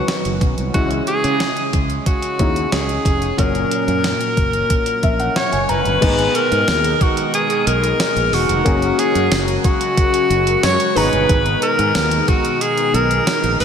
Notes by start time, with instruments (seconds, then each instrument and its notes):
Already playing: analog synth pad D#3 F#3 B3 C#4 F#4, grand piano F#3 B3 C#4 D#4, alto saxophone F#4
0.08 snare, closed hi-hat
0.25 fretless electric bass F#1, closed hi-hat
0.41 fretless electric bass B1, kick, closed hi-hat
0.58 fretless electric bass C2, closed hi-hat
0.73 fretless electric bass C#2, analog synth pad C#3 G#3 C#4, grand piano E3 G#3 C#4 E4, alto saxophone F#4, kick, closed hi-hat
0.91 closed hi-hat
1.07 alto saxophone G#4, closed hi-hat
1.24 fretless electric bass C#3, closed hi-hat
1.40 snare, closed hi-hat
1.57 closed hi-hat
1.73 fretless electric bass C#2, kick, closed hi-hat
1.90 closed hi-hat
2.06 alto saxophone F#4, kick, closed hi-hat
2.22 closed hi-hat
2.39 fretless electric bass D#2, grand piano G#3 C#4 D#4 E4, kick, closed hi-hat
2.56 closed hi-hat
2.72 fretless electric bass C#2, alto saxophone G#4, snare, closed hi-hat
2.89 closed hi-hat
3.05 fretless electric bass F1, kick, closed hi-hat
3.22 closed hi-hat
3.37 fretless electric bass F#1, grand piano A#2 F#3 C#4 F#4, analog synth pad A#2 F#3, alto saxophone A#4, kick, closed hi-hat
3.55 closed hi-hat
3.71 closed hi-hat
3.88 fretless electric bass F#2, closed hi-hat
4.04 snare, closed hi-hat
4.21 closed hi-hat
4.37 fretless electric bass F#1, kick, closed hi-hat
4.53 closed hi-hat
4.70 kick, closed hi-hat
4.86 closed hi-hat
5.03 fretless electric bass A#1, grand piano E5, kick, closed hi-hat
5.20 grand piano F#5, closed hi-hat
5.36 alto saxophone C#5, grand piano F#5, snare, closed hi-hat
5.53 fretless electric bass F#1, grand piano G#5, closed hi-hat
5.69 fretless electric bass F#1, alto saxophone B4, grand piano A#5, closed hi-hat
5.85 fretless electric bass G1, closed hi-hat
6.01 fretless electric bass G#1, analog synth pad B2 D#3 G#3 D#4, grand piano G#3 B3 D#4 G#4, analog polysynth B3 D#4 G#4, kick, closed hi-hat, crash
6.19 closed hi-hat
6.35 alto saxophone A#4, closed hi-hat
6.52 fretless electric bass G#2, closed hi-hat
6.68 fretless electric bass D#2, snare, closed hi-hat, tambourine
6.84 closed hi-hat
7.01 alto saxophone F#4, kick, closed hi-hat
7.17 closed hi-hat
7.34 alto saxophone G#4, closed hi-hat
7.50 closed hi-hat
7.67 fretless electric bass B1, alto saxophone A#4, closed hi-hat
7.84 closed hi-hat
8.00 snare, closed hi-hat, tambourine
8.16 fretless electric bass A#1, closed hi-hat
8.33 fretless electric bass E1, alto saxophone F#4, open hi-hat
8.49 fretless electric bass F1, closed hi-hat
8.64 fretless electric bass F#1, analog synth pad C#3 F#3 F#4, grand piano A#3 C#4 F#4 G#4, analog polysynth C#4 F#4 A#4, kick, closed hi-hat
8.82 closed hi-hat
8.99 alto saxophone G#4, closed hi-hat
9.15 fretless electric bass F#2, closed hi-hat
9.31 fretless electric bass F#1, snare, closed hi-hat, tambourine
9.48 closed hi-hat
9.64 alto saxophone F#4, kick, closed hi-hat
9.81 closed hi-hat
9.97 kick, closed hi-hat
10.14 closed hi-hat
10.30 fretless electric bass F#1, closed hi-hat
10.47 closed hi-hat
10.63 fretless electric bass F#2, alto saxophone C#5, snare, closed hi-hat, tambourine
10.80 closed hi-hat
10.95 fretless electric bass G#1, analog synth pad B2 D#3 D#4, grand piano B3 D#4 G#4 A#5, analog polysynth B3 D#4 G#4, alto saxophone B4, open hi-hat
11.13 fretless electric bass G1, closed hi-hat
11.29 fretless electric bass G#1, kick, closed hi-hat
11.46 closed hi-hat
11.62 alto saxophone A#4, closed hi-hat
11.79 fretless electric bass G#2, closed hi-hat
11.95 fretless electric bass D#2, snare, closed hi-hat, tambourine
12.11 closed hi-hat
12.28 alto saxophone F#4, kick, closed hi-hat
12.45 closed hi-hat
12.61 alto saxophone G#4, closed hi-hat
12.78 closed hi-hat
12.94 fretless electric bass B1, alto saxophone A#4, closed hi-hat
13.11 closed hi-hat
13.27 snare, closed hi-hat, tambourine
13.44 fretless electric bass A#1, closed hi-hat
13.60 fretless electric bass A1, alto saxophone B4, open hi-hat